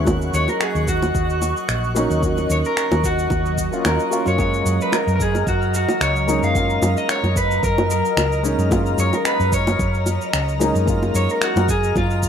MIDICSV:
0, 0, Header, 1, 7, 480
1, 0, Start_track
1, 0, Key_signature, 6, "major"
1, 0, Tempo, 540541
1, 58, Time_signature, 4, 2, 24, 8
1, 10911, End_track
2, 0, Start_track
2, 0, Title_t, "Synth texture"
2, 0, Program_c, 0, 99
2, 0, Note_on_c, 0, 90, 75
2, 3895, Note_on_c, 0, 89, 78
2, 3907, Note_off_c, 0, 90, 0
2, 10911, Note_off_c, 0, 89, 0
2, 10911, End_track
3, 0, Start_track
3, 0, Title_t, "Analog synth pad"
3, 0, Program_c, 1, 89
3, 0, Note_on_c, 1, 85, 90
3, 56, Note_on_c, 1, 75, 70
3, 58, Note_on_c, 1, 54, 77
3, 3860, Note_off_c, 1, 85, 0
3, 3893, Note_on_c, 1, 82, 88
3, 10911, Note_off_c, 1, 54, 0
3, 10911, Note_off_c, 1, 75, 0
3, 10911, Note_off_c, 1, 82, 0
3, 10911, End_track
4, 0, Start_track
4, 0, Title_t, "Clean electric guitar"
4, 0, Program_c, 2, 27
4, 309, Note_on_c, 2, 73, 96
4, 438, Note_off_c, 2, 73, 0
4, 438, Note_on_c, 2, 70, 83
4, 547, Note_off_c, 2, 70, 0
4, 547, Note_on_c, 2, 68, 90
4, 782, Note_off_c, 2, 68, 0
4, 787, Note_on_c, 2, 66, 77
4, 1707, Note_off_c, 2, 66, 0
4, 2236, Note_on_c, 2, 73, 77
4, 2281, Note_off_c, 2, 73, 0
4, 2365, Note_on_c, 2, 70, 82
4, 2713, Note_on_c, 2, 66, 83
4, 2716, Note_off_c, 2, 70, 0
4, 3431, Note_on_c, 2, 70, 77
4, 3447, Note_off_c, 2, 66, 0
4, 3769, Note_off_c, 2, 70, 0
4, 3801, Note_on_c, 2, 73, 82
4, 3899, Note_off_c, 2, 73, 0
4, 3910, Note_on_c, 2, 73, 88
4, 4279, Note_off_c, 2, 73, 0
4, 4282, Note_on_c, 2, 71, 78
4, 4392, Note_off_c, 2, 71, 0
4, 4392, Note_on_c, 2, 70, 88
4, 4568, Note_off_c, 2, 70, 0
4, 4579, Note_on_c, 2, 70, 62
4, 4626, Note_off_c, 2, 70, 0
4, 4636, Note_on_c, 2, 68, 81
4, 4866, Note_off_c, 2, 68, 0
4, 4870, Note_on_c, 2, 66, 80
4, 5105, Note_off_c, 2, 66, 0
4, 5115, Note_on_c, 2, 66, 80
4, 5330, Note_off_c, 2, 66, 0
4, 5348, Note_on_c, 2, 73, 85
4, 5716, Note_off_c, 2, 73, 0
4, 5719, Note_on_c, 2, 77, 93
4, 5820, Note_off_c, 2, 77, 0
4, 5831, Note_on_c, 2, 77, 104
4, 6169, Note_off_c, 2, 77, 0
4, 6197, Note_on_c, 2, 75, 89
4, 6295, Note_off_c, 2, 75, 0
4, 6310, Note_on_c, 2, 73, 102
4, 6528, Note_off_c, 2, 73, 0
4, 6548, Note_on_c, 2, 71, 86
4, 6767, Note_off_c, 2, 71, 0
4, 6785, Note_on_c, 2, 70, 90
4, 7005, Note_off_c, 2, 70, 0
4, 7028, Note_on_c, 2, 70, 82
4, 7469, Note_off_c, 2, 70, 0
4, 7990, Note_on_c, 2, 73, 90
4, 8122, Note_off_c, 2, 73, 0
4, 8122, Note_on_c, 2, 70, 88
4, 8226, Note_off_c, 2, 70, 0
4, 8230, Note_on_c, 2, 71, 98
4, 8467, Note_off_c, 2, 71, 0
4, 8470, Note_on_c, 2, 73, 84
4, 9388, Note_off_c, 2, 73, 0
4, 9910, Note_on_c, 2, 73, 93
4, 10045, Note_off_c, 2, 73, 0
4, 10045, Note_on_c, 2, 70, 91
4, 10146, Note_off_c, 2, 70, 0
4, 10154, Note_on_c, 2, 66, 96
4, 10391, Note_off_c, 2, 66, 0
4, 10394, Note_on_c, 2, 68, 88
4, 10610, Note_off_c, 2, 68, 0
4, 10637, Note_on_c, 2, 65, 87
4, 10911, Note_off_c, 2, 65, 0
4, 10911, End_track
5, 0, Start_track
5, 0, Title_t, "Grand piano"
5, 0, Program_c, 3, 0
5, 0, Control_c, 3, 64, 127
5, 41, Note_on_c, 3, 54, 68
5, 52, Note_on_c, 3, 58, 62
5, 63, Note_on_c, 3, 61, 63
5, 68, Control_c, 3, 64, 0
5, 74, Note_on_c, 3, 66, 78
5, 237, Control_c, 3, 64, 127
5, 1703, Note_off_c, 3, 54, 0
5, 1708, Note_off_c, 3, 58, 0
5, 1714, Note_off_c, 3, 61, 0
5, 1720, Note_off_c, 3, 66, 0
5, 1729, Note_on_c, 3, 54, 86
5, 1734, Note_on_c, 3, 58, 74
5, 1741, Note_on_c, 3, 61, 77
5, 1747, Note_on_c, 3, 63, 92
5, 1947, Note_off_c, 3, 54, 0
5, 1950, Note_off_c, 3, 58, 0
5, 1953, Note_off_c, 3, 61, 0
5, 1956, Note_off_c, 3, 63, 0
5, 1963, Note_on_c, 3, 54, 68
5, 1973, Note_on_c, 3, 58, 66
5, 1985, Note_on_c, 3, 61, 59
5, 1996, Note_on_c, 3, 66, 81
5, 3274, Note_off_c, 3, 54, 0
5, 3279, Note_off_c, 3, 58, 0
5, 3286, Note_off_c, 3, 61, 0
5, 3291, Note_off_c, 3, 66, 0
5, 3299, Note_on_c, 3, 54, 74
5, 3305, Note_on_c, 3, 58, 70
5, 3311, Note_on_c, 3, 61, 69
5, 3315, Note_on_c, 3, 65, 88
5, 3627, Note_off_c, 3, 54, 0
5, 3630, Note_off_c, 3, 58, 0
5, 3633, Note_off_c, 3, 61, 0
5, 3635, Note_off_c, 3, 65, 0
5, 3647, Note_on_c, 3, 54, 76
5, 3652, Note_on_c, 3, 58, 71
5, 3657, Note_on_c, 3, 61, 75
5, 3664, Note_on_c, 3, 65, 86
5, 3866, Note_off_c, 3, 54, 0
5, 3869, Note_off_c, 3, 58, 0
5, 3871, Note_off_c, 3, 61, 0
5, 3874, Note_off_c, 3, 65, 0
5, 3878, Note_on_c, 3, 56, 64
5, 3889, Note_on_c, 3, 58, 65
5, 3902, Note_on_c, 3, 61, 66
5, 3909, Control_c, 3, 64, 0
5, 3912, Note_on_c, 3, 65, 75
5, 4085, Control_c, 3, 64, 127
5, 5542, Note_off_c, 3, 56, 0
5, 5547, Note_off_c, 3, 58, 0
5, 5553, Note_off_c, 3, 61, 0
5, 5559, Note_off_c, 3, 65, 0
5, 5566, Note_on_c, 3, 56, 80
5, 5573, Note_on_c, 3, 58, 77
5, 5578, Note_on_c, 3, 61, 77
5, 5584, Note_on_c, 3, 63, 91
5, 5786, Note_off_c, 3, 56, 0
5, 5789, Note_off_c, 3, 58, 0
5, 5791, Note_off_c, 3, 61, 0
5, 5794, Note_off_c, 3, 63, 0
5, 5801, Note_on_c, 3, 56, 66
5, 5812, Note_on_c, 3, 58, 65
5, 5824, Note_on_c, 3, 61, 63
5, 5835, Note_on_c, 3, 65, 75
5, 7463, Note_off_c, 3, 56, 0
5, 7468, Note_off_c, 3, 58, 0
5, 7474, Note_off_c, 3, 61, 0
5, 7480, Note_off_c, 3, 65, 0
5, 7486, Note_on_c, 3, 56, 79
5, 7492, Note_on_c, 3, 58, 74
5, 7497, Note_on_c, 3, 61, 81
5, 7504, Note_on_c, 3, 63, 85
5, 7705, Note_off_c, 3, 56, 0
5, 7708, Note_off_c, 3, 58, 0
5, 7711, Note_off_c, 3, 61, 0
5, 7714, Note_off_c, 3, 63, 0
5, 7719, Note_on_c, 3, 56, 71
5, 7731, Note_on_c, 3, 58, 63
5, 7741, Note_on_c, 3, 61, 65
5, 7752, Note_on_c, 3, 65, 84
5, 9382, Note_off_c, 3, 56, 0
5, 9388, Note_off_c, 3, 58, 0
5, 9393, Note_off_c, 3, 61, 0
5, 9398, Note_off_c, 3, 65, 0
5, 9408, Note_on_c, 3, 56, 86
5, 9413, Note_on_c, 3, 58, 74
5, 9418, Note_on_c, 3, 61, 80
5, 9424, Note_on_c, 3, 63, 89
5, 9626, Note_off_c, 3, 56, 0
5, 9629, Note_off_c, 3, 58, 0
5, 9631, Note_off_c, 3, 61, 0
5, 9634, Note_off_c, 3, 63, 0
5, 9642, Note_on_c, 3, 56, 74
5, 9653, Note_on_c, 3, 58, 67
5, 9662, Note_on_c, 3, 61, 66
5, 9674, Note_on_c, 3, 65, 75
5, 10911, Note_off_c, 3, 56, 0
5, 10911, Note_off_c, 3, 58, 0
5, 10911, Note_off_c, 3, 61, 0
5, 10911, Note_off_c, 3, 65, 0
5, 10911, End_track
6, 0, Start_track
6, 0, Title_t, "Fingered electric bass"
6, 0, Program_c, 4, 33
6, 0, Note_on_c, 4, 39, 81
6, 267, Note_off_c, 4, 39, 0
6, 296, Note_on_c, 4, 39, 89
6, 405, Note_off_c, 4, 39, 0
6, 666, Note_on_c, 4, 39, 90
6, 987, Note_off_c, 4, 39, 0
6, 1018, Note_on_c, 4, 39, 75
6, 1353, Note_off_c, 4, 39, 0
6, 1496, Note_on_c, 4, 34, 76
6, 1832, Note_off_c, 4, 34, 0
6, 1866, Note_on_c, 4, 39, 79
6, 2187, Note_off_c, 4, 39, 0
6, 2218, Note_on_c, 4, 39, 93
6, 2326, Note_off_c, 4, 39, 0
6, 2588, Note_on_c, 4, 39, 84
6, 2908, Note_off_c, 4, 39, 0
6, 2936, Note_on_c, 4, 39, 76
6, 3272, Note_off_c, 4, 39, 0
6, 3418, Note_on_c, 4, 39, 77
6, 3526, Note_off_c, 4, 39, 0
6, 3787, Note_on_c, 4, 42, 67
6, 4108, Note_off_c, 4, 42, 0
6, 4135, Note_on_c, 4, 42, 90
6, 4244, Note_off_c, 4, 42, 0
6, 4504, Note_on_c, 4, 42, 91
6, 4826, Note_off_c, 4, 42, 0
6, 4856, Note_on_c, 4, 42, 73
6, 5192, Note_off_c, 4, 42, 0
6, 5334, Note_on_c, 4, 37, 80
6, 5671, Note_off_c, 4, 37, 0
6, 5706, Note_on_c, 4, 42, 75
6, 6027, Note_off_c, 4, 42, 0
6, 6056, Note_on_c, 4, 42, 88
6, 6165, Note_off_c, 4, 42, 0
6, 6423, Note_on_c, 4, 42, 86
6, 6746, Note_off_c, 4, 42, 0
6, 6776, Note_on_c, 4, 42, 76
6, 7112, Note_off_c, 4, 42, 0
6, 7253, Note_on_c, 4, 37, 80
6, 7590, Note_off_c, 4, 37, 0
6, 7622, Note_on_c, 4, 42, 86
6, 7945, Note_off_c, 4, 42, 0
6, 7974, Note_on_c, 4, 42, 89
6, 8084, Note_off_c, 4, 42, 0
6, 8345, Note_on_c, 4, 42, 83
6, 8666, Note_off_c, 4, 42, 0
6, 8696, Note_on_c, 4, 42, 75
6, 9032, Note_off_c, 4, 42, 0
6, 9176, Note_on_c, 4, 37, 76
6, 9512, Note_off_c, 4, 37, 0
6, 9544, Note_on_c, 4, 42, 79
6, 9866, Note_off_c, 4, 42, 0
6, 9896, Note_on_c, 4, 42, 89
6, 10005, Note_off_c, 4, 42, 0
6, 10265, Note_on_c, 4, 42, 87
6, 10586, Note_off_c, 4, 42, 0
6, 10617, Note_on_c, 4, 42, 82
6, 10911, Note_off_c, 4, 42, 0
6, 10911, End_track
7, 0, Start_track
7, 0, Title_t, "Drums"
7, 58, Note_on_c, 9, 36, 105
7, 60, Note_on_c, 9, 69, 38
7, 64, Note_on_c, 9, 60, 77
7, 147, Note_off_c, 9, 36, 0
7, 149, Note_off_c, 9, 69, 0
7, 153, Note_off_c, 9, 60, 0
7, 192, Note_on_c, 9, 69, 20
7, 281, Note_off_c, 9, 69, 0
7, 301, Note_on_c, 9, 69, 65
7, 390, Note_off_c, 9, 69, 0
7, 425, Note_on_c, 9, 60, 45
7, 431, Note_on_c, 9, 69, 30
7, 514, Note_off_c, 9, 60, 0
7, 520, Note_off_c, 9, 69, 0
7, 538, Note_on_c, 9, 26, 86
7, 541, Note_on_c, 9, 69, 37
7, 627, Note_off_c, 9, 26, 0
7, 630, Note_off_c, 9, 69, 0
7, 672, Note_on_c, 9, 69, 18
7, 760, Note_off_c, 9, 69, 0
7, 779, Note_on_c, 9, 36, 87
7, 780, Note_on_c, 9, 69, 66
7, 867, Note_off_c, 9, 36, 0
7, 869, Note_off_c, 9, 69, 0
7, 910, Note_on_c, 9, 60, 59
7, 912, Note_on_c, 9, 69, 26
7, 999, Note_off_c, 9, 60, 0
7, 1000, Note_off_c, 9, 69, 0
7, 1019, Note_on_c, 9, 36, 105
7, 1021, Note_on_c, 9, 69, 37
7, 1108, Note_off_c, 9, 36, 0
7, 1110, Note_off_c, 9, 69, 0
7, 1152, Note_on_c, 9, 69, 19
7, 1241, Note_off_c, 9, 69, 0
7, 1259, Note_on_c, 9, 60, 42
7, 1261, Note_on_c, 9, 69, 69
7, 1348, Note_off_c, 9, 60, 0
7, 1349, Note_off_c, 9, 69, 0
7, 1391, Note_on_c, 9, 69, 27
7, 1480, Note_off_c, 9, 69, 0
7, 1499, Note_on_c, 9, 26, 86
7, 1501, Note_on_c, 9, 69, 38
7, 1588, Note_off_c, 9, 26, 0
7, 1590, Note_off_c, 9, 69, 0
7, 1633, Note_on_c, 9, 69, 20
7, 1722, Note_off_c, 9, 69, 0
7, 1741, Note_on_c, 9, 69, 68
7, 1743, Note_on_c, 9, 60, 68
7, 1830, Note_off_c, 9, 69, 0
7, 1832, Note_off_c, 9, 60, 0
7, 1871, Note_on_c, 9, 69, 28
7, 1960, Note_off_c, 9, 69, 0
7, 1978, Note_on_c, 9, 36, 100
7, 1981, Note_on_c, 9, 69, 40
7, 2066, Note_off_c, 9, 36, 0
7, 2069, Note_off_c, 9, 69, 0
7, 2110, Note_on_c, 9, 69, 18
7, 2112, Note_on_c, 9, 60, 43
7, 2199, Note_off_c, 9, 69, 0
7, 2201, Note_off_c, 9, 60, 0
7, 2221, Note_on_c, 9, 69, 72
7, 2309, Note_off_c, 9, 69, 0
7, 2352, Note_on_c, 9, 69, 28
7, 2441, Note_off_c, 9, 69, 0
7, 2460, Note_on_c, 9, 26, 82
7, 2463, Note_on_c, 9, 69, 39
7, 2549, Note_off_c, 9, 26, 0
7, 2551, Note_off_c, 9, 69, 0
7, 2589, Note_on_c, 9, 60, 78
7, 2591, Note_on_c, 9, 69, 20
7, 2678, Note_off_c, 9, 60, 0
7, 2680, Note_off_c, 9, 69, 0
7, 2698, Note_on_c, 9, 36, 87
7, 2701, Note_on_c, 9, 69, 65
7, 2786, Note_off_c, 9, 36, 0
7, 2790, Note_off_c, 9, 69, 0
7, 2831, Note_on_c, 9, 69, 29
7, 2920, Note_off_c, 9, 69, 0
7, 2932, Note_on_c, 9, 60, 49
7, 2937, Note_on_c, 9, 36, 114
7, 2941, Note_on_c, 9, 69, 40
7, 3020, Note_off_c, 9, 60, 0
7, 3026, Note_off_c, 9, 36, 0
7, 3029, Note_off_c, 9, 69, 0
7, 3070, Note_on_c, 9, 69, 19
7, 3159, Note_off_c, 9, 69, 0
7, 3176, Note_on_c, 9, 36, 54
7, 3179, Note_on_c, 9, 69, 67
7, 3265, Note_off_c, 9, 36, 0
7, 3268, Note_off_c, 9, 69, 0
7, 3310, Note_on_c, 9, 69, 29
7, 3399, Note_off_c, 9, 69, 0
7, 3418, Note_on_c, 9, 26, 90
7, 3420, Note_on_c, 9, 69, 40
7, 3424, Note_on_c, 9, 60, 71
7, 3506, Note_off_c, 9, 26, 0
7, 3509, Note_off_c, 9, 69, 0
7, 3512, Note_off_c, 9, 60, 0
7, 3549, Note_on_c, 9, 69, 20
7, 3638, Note_off_c, 9, 69, 0
7, 3660, Note_on_c, 9, 69, 71
7, 3749, Note_off_c, 9, 69, 0
7, 3780, Note_on_c, 9, 60, 40
7, 3790, Note_on_c, 9, 69, 29
7, 3869, Note_off_c, 9, 60, 0
7, 3879, Note_off_c, 9, 69, 0
7, 3892, Note_on_c, 9, 60, 46
7, 3896, Note_on_c, 9, 36, 111
7, 3900, Note_on_c, 9, 69, 40
7, 3981, Note_off_c, 9, 60, 0
7, 3985, Note_off_c, 9, 36, 0
7, 3989, Note_off_c, 9, 69, 0
7, 4030, Note_on_c, 9, 69, 19
7, 4119, Note_off_c, 9, 69, 0
7, 4140, Note_on_c, 9, 69, 73
7, 4229, Note_off_c, 9, 69, 0
7, 4272, Note_on_c, 9, 69, 30
7, 4361, Note_off_c, 9, 69, 0
7, 4373, Note_on_c, 9, 60, 67
7, 4378, Note_on_c, 9, 26, 86
7, 4381, Note_on_c, 9, 69, 40
7, 4462, Note_off_c, 9, 60, 0
7, 4467, Note_off_c, 9, 26, 0
7, 4470, Note_off_c, 9, 69, 0
7, 4512, Note_on_c, 9, 69, 20
7, 4601, Note_off_c, 9, 69, 0
7, 4617, Note_on_c, 9, 36, 93
7, 4622, Note_on_c, 9, 69, 64
7, 4706, Note_off_c, 9, 36, 0
7, 4710, Note_off_c, 9, 69, 0
7, 4750, Note_on_c, 9, 60, 46
7, 4752, Note_on_c, 9, 69, 29
7, 4839, Note_off_c, 9, 60, 0
7, 4840, Note_off_c, 9, 69, 0
7, 4856, Note_on_c, 9, 36, 114
7, 4861, Note_on_c, 9, 69, 40
7, 4945, Note_off_c, 9, 36, 0
7, 4949, Note_off_c, 9, 69, 0
7, 4992, Note_on_c, 9, 69, 21
7, 5080, Note_off_c, 9, 69, 0
7, 5100, Note_on_c, 9, 69, 74
7, 5189, Note_off_c, 9, 69, 0
7, 5226, Note_on_c, 9, 60, 69
7, 5231, Note_on_c, 9, 69, 31
7, 5315, Note_off_c, 9, 60, 0
7, 5320, Note_off_c, 9, 69, 0
7, 5338, Note_on_c, 9, 26, 94
7, 5341, Note_on_c, 9, 69, 40
7, 5427, Note_off_c, 9, 26, 0
7, 5430, Note_off_c, 9, 69, 0
7, 5472, Note_on_c, 9, 69, 20
7, 5560, Note_off_c, 9, 69, 0
7, 5582, Note_on_c, 9, 69, 73
7, 5583, Note_on_c, 9, 60, 51
7, 5670, Note_off_c, 9, 69, 0
7, 5672, Note_off_c, 9, 60, 0
7, 5711, Note_on_c, 9, 69, 31
7, 5800, Note_off_c, 9, 69, 0
7, 5816, Note_on_c, 9, 36, 109
7, 5820, Note_on_c, 9, 69, 41
7, 5905, Note_off_c, 9, 36, 0
7, 5909, Note_off_c, 9, 69, 0
7, 5949, Note_on_c, 9, 69, 20
7, 6038, Note_off_c, 9, 69, 0
7, 6059, Note_on_c, 9, 69, 78
7, 6061, Note_on_c, 9, 60, 73
7, 6148, Note_off_c, 9, 69, 0
7, 6150, Note_off_c, 9, 60, 0
7, 6191, Note_on_c, 9, 69, 30
7, 6280, Note_off_c, 9, 69, 0
7, 6298, Note_on_c, 9, 26, 93
7, 6300, Note_on_c, 9, 69, 42
7, 6386, Note_off_c, 9, 26, 0
7, 6389, Note_off_c, 9, 69, 0
7, 6429, Note_on_c, 9, 60, 48
7, 6431, Note_on_c, 9, 69, 22
7, 6518, Note_off_c, 9, 60, 0
7, 6520, Note_off_c, 9, 69, 0
7, 6535, Note_on_c, 9, 36, 95
7, 6542, Note_on_c, 9, 69, 69
7, 6624, Note_off_c, 9, 36, 0
7, 6630, Note_off_c, 9, 69, 0
7, 6671, Note_on_c, 9, 69, 31
7, 6760, Note_off_c, 9, 69, 0
7, 6776, Note_on_c, 9, 36, 120
7, 6781, Note_on_c, 9, 69, 41
7, 6865, Note_off_c, 9, 36, 0
7, 6869, Note_off_c, 9, 69, 0
7, 6910, Note_on_c, 9, 69, 22
7, 6911, Note_on_c, 9, 60, 72
7, 6999, Note_off_c, 9, 69, 0
7, 7000, Note_off_c, 9, 60, 0
7, 7020, Note_on_c, 9, 69, 75
7, 7109, Note_off_c, 9, 69, 0
7, 7151, Note_on_c, 9, 69, 32
7, 7240, Note_off_c, 9, 69, 0
7, 7258, Note_on_c, 9, 26, 91
7, 7260, Note_on_c, 9, 69, 42
7, 7262, Note_on_c, 9, 60, 51
7, 7347, Note_off_c, 9, 26, 0
7, 7349, Note_off_c, 9, 69, 0
7, 7351, Note_off_c, 9, 60, 0
7, 7390, Note_on_c, 9, 69, 21
7, 7479, Note_off_c, 9, 69, 0
7, 7500, Note_on_c, 9, 69, 71
7, 7589, Note_off_c, 9, 69, 0
7, 7630, Note_on_c, 9, 69, 30
7, 7718, Note_off_c, 9, 69, 0
7, 7736, Note_on_c, 9, 36, 121
7, 7739, Note_on_c, 9, 69, 46
7, 7742, Note_on_c, 9, 60, 80
7, 7825, Note_off_c, 9, 36, 0
7, 7827, Note_off_c, 9, 69, 0
7, 7831, Note_off_c, 9, 60, 0
7, 7868, Note_on_c, 9, 69, 21
7, 7957, Note_off_c, 9, 69, 0
7, 7977, Note_on_c, 9, 69, 77
7, 8066, Note_off_c, 9, 69, 0
7, 8108, Note_on_c, 9, 60, 52
7, 8110, Note_on_c, 9, 69, 32
7, 8196, Note_off_c, 9, 60, 0
7, 8199, Note_off_c, 9, 69, 0
7, 8216, Note_on_c, 9, 26, 94
7, 8219, Note_on_c, 9, 69, 44
7, 8305, Note_off_c, 9, 26, 0
7, 8308, Note_off_c, 9, 69, 0
7, 8350, Note_on_c, 9, 69, 22
7, 8438, Note_off_c, 9, 69, 0
7, 8456, Note_on_c, 9, 36, 90
7, 8459, Note_on_c, 9, 69, 73
7, 8545, Note_off_c, 9, 36, 0
7, 8548, Note_off_c, 9, 69, 0
7, 8589, Note_on_c, 9, 60, 79
7, 8590, Note_on_c, 9, 69, 32
7, 8678, Note_off_c, 9, 60, 0
7, 8679, Note_off_c, 9, 69, 0
7, 8697, Note_on_c, 9, 36, 113
7, 8700, Note_on_c, 9, 69, 41
7, 8786, Note_off_c, 9, 36, 0
7, 8789, Note_off_c, 9, 69, 0
7, 8829, Note_on_c, 9, 69, 22
7, 8918, Note_off_c, 9, 69, 0
7, 8935, Note_on_c, 9, 60, 47
7, 8938, Note_on_c, 9, 69, 76
7, 9023, Note_off_c, 9, 60, 0
7, 9027, Note_off_c, 9, 69, 0
7, 9071, Note_on_c, 9, 69, 30
7, 9160, Note_off_c, 9, 69, 0
7, 9177, Note_on_c, 9, 26, 95
7, 9180, Note_on_c, 9, 69, 43
7, 9266, Note_off_c, 9, 26, 0
7, 9269, Note_off_c, 9, 69, 0
7, 9311, Note_on_c, 9, 69, 21
7, 9400, Note_off_c, 9, 69, 0
7, 9421, Note_on_c, 9, 69, 74
7, 9422, Note_on_c, 9, 60, 69
7, 9510, Note_off_c, 9, 69, 0
7, 9511, Note_off_c, 9, 60, 0
7, 9551, Note_on_c, 9, 69, 32
7, 9639, Note_off_c, 9, 69, 0
7, 9658, Note_on_c, 9, 36, 118
7, 9660, Note_on_c, 9, 69, 40
7, 9747, Note_off_c, 9, 36, 0
7, 9749, Note_off_c, 9, 69, 0
7, 9791, Note_on_c, 9, 60, 49
7, 9792, Note_on_c, 9, 69, 19
7, 9880, Note_off_c, 9, 60, 0
7, 9881, Note_off_c, 9, 69, 0
7, 9901, Note_on_c, 9, 69, 78
7, 9990, Note_off_c, 9, 69, 0
7, 10031, Note_on_c, 9, 69, 32
7, 10119, Note_off_c, 9, 69, 0
7, 10137, Note_on_c, 9, 26, 86
7, 10140, Note_on_c, 9, 69, 42
7, 10226, Note_off_c, 9, 26, 0
7, 10228, Note_off_c, 9, 69, 0
7, 10270, Note_on_c, 9, 69, 23
7, 10274, Note_on_c, 9, 60, 82
7, 10359, Note_off_c, 9, 69, 0
7, 10362, Note_off_c, 9, 60, 0
7, 10378, Note_on_c, 9, 36, 99
7, 10380, Note_on_c, 9, 69, 67
7, 10467, Note_off_c, 9, 36, 0
7, 10468, Note_off_c, 9, 69, 0
7, 10511, Note_on_c, 9, 69, 30
7, 10600, Note_off_c, 9, 69, 0
7, 10617, Note_on_c, 9, 36, 114
7, 10620, Note_on_c, 9, 69, 40
7, 10626, Note_on_c, 9, 60, 49
7, 10706, Note_off_c, 9, 36, 0
7, 10709, Note_off_c, 9, 69, 0
7, 10715, Note_off_c, 9, 60, 0
7, 10750, Note_on_c, 9, 69, 22
7, 10839, Note_off_c, 9, 69, 0
7, 10858, Note_on_c, 9, 36, 57
7, 10859, Note_on_c, 9, 69, 74
7, 10911, Note_off_c, 9, 36, 0
7, 10911, Note_off_c, 9, 69, 0
7, 10911, End_track
0, 0, End_of_file